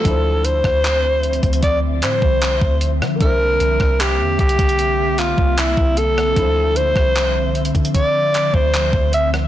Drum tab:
HH |x---x---x---xxxxx---x---x---x---|x---x---x---xxxxx---x---x---x---|x---x---x---xxxxx---x---x---x---|
CP |--------x-----------x---x-------|--------x-----------x---x-------|--------x-----------x---x-------|
SD |------r-----------------------r-|------r-----------------------r-|------r-----------------------r-|
BD |o-----o-------o-o-----o---o-----|o-----o-----o-o-------o---o-----|o-----o-------o-o-----o---o-----|